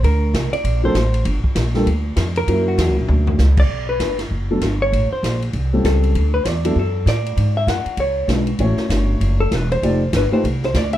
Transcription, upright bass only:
0.03 0.33 D2 medium
0.34 0.51 C2 medium
0.52 muted upright bass stroke soft
0.64 0.94 A#1 medium
0.94 1.24 A1 medium
1.25 1.43 G1 loud
1.44 muted upright bass stroke soft
1.55 1.85 A#1 loud
1.86 2.16 D2 medium
2.17 2.46 F2 loud
2.48 2.77 F#2 medium
2.78 2.89 E2 loud
2.89 2.98 C#2 medium
2.99 3.08 A#1 medium
3.09 3.38 D2 loud
3.39 3.68 C#2 loud
3.69 3.99 B1 medium
4.00 4.30 G1 medium
4.31 4.61 F#1 medium
4.62 4.91 G1 medium
4.92 5.10 A1 medium
5.12 muted upright bass stroke soft
5.23 5.53 A#1 medium
5.53 5.83 C2 medium
5.84 6.14 C#2 loud
6.15 6.44 D2 medium
6.45 6.75 E2 loud
6.76 7.05 F#2 medium
7.06 7.36 A2 medium
7.37 7.67 G#2 medium
7.67 7.85 F#2 medium
7.86 muted upright bass stroke soft
7.97 8.27 C#2 medium
8.28 8.58 B1 medium
8.59 8.77 A1 medium
8.77 muted upright bass stroke soft
8.89 9.20 G1 medium
9.20 9.50 F#1 medium
9.51 9.81 E1 medium
9.82 10.12 F1 medium
10.13 10.30 G1 medium
10.32 muted upright bass stroke soft
10.44 10.73 C2 medium
10.74 10.98 D2 medium

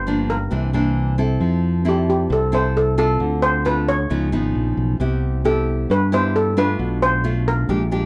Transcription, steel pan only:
0.00 0.30 C5 medium
0.30 1.15 A#4 medium
1.89 2.08 G4 medium
2.10 2.32 G4 medium
2.32 2.52 A4 medium
2.55 2.75 C5 medium
2.77 2.98 A4 medium
2.99 3.44 A4 medium
3.42 3.66 C5 loud
3.66 3.89 B4 medium
3.89 4.74 C#5 medium
5.45 5.91 A4 medium
5.91 6.11 B4 medium
6.14 6.34 C5 medium
6.36 6.58 A4 medium
6.58 7.03 B4 loud
7.02 7.48 C5 loud
7.48 8.06 A#4 medium

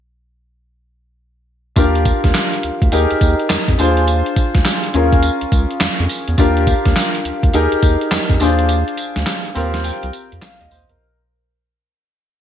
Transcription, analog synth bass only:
1.77 2.12 D#2 loud
2.24 2.32 D#2 medium
2.64 2.71 D2 soft
2.82 2.90 D2 medium
2.93 3.06 D#2 loud
3.11 3.15 D#2 medium
3.21 3.35 D#2 medium
3.51 3.58 F2 soft
3.68 3.76 F2 loud
3.79 4.23 D#2 loud
4.55 4.63 D2 medium
4.95 5.30 D#2 medium
5.42 5.46 C#2 medium
5.52 5.66 C#2 loud
5.82 5.89 F2 soft
6.00 6.07 F2 loud
6.28 6.36 E2 medium
6.38 6.74 D#2 loud
6.86 6.94 D#2 medium
7.25 7.32 D2 soft
7.43 7.51 D2 medium
7.54 7.68 D#2 loud
7.72 7.76 D#2 medium
7.83 7.97 D#2 loud
8.12 8.19 F2 soft
8.30 8.38 F2 medium
8.40 8.84 D#2 loud
9.17 9.24 D2 medium
9.56 9.92 D#2 medium
10.04 10.11 C2 loud
10.33 10.40 F2 medium
10.62 10.69 D#2 medium
10.72 10.85 D#2 loud
10.90 10.97 E2 medium

